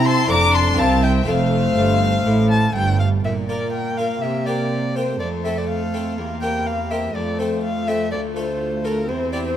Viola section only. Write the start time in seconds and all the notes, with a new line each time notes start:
Already playing: E4
0.30 D4
0.79 C4
1.28 A3
3.25 A#3
5.20 A3
6.18 A#3
7.15 A3
9.09 C4